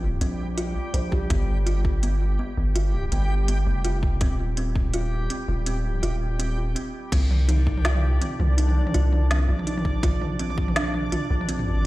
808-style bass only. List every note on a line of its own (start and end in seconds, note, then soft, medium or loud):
0.00 0.20 A#1 medium
0.21 0.75 A#1 medium
0.94 1.29 A#1 loud
1.30 2.38 G1 loud
2.58 3.11 G1 medium
3.12 3.65 G1 medium
3.67 4.20 F1 medium
4.21 5.29 D#1 loud
5.48 6.02 D#1 loud
6.03 6.76 D#1 medium
7.12 8.20 C2 medium
8.40 8.93 C2 medium
8.94 9.47 C2 medium
9.49 10.02 A#1 medium
10.03 11.11 A#1 medium
11.30 11.84 A#1 medium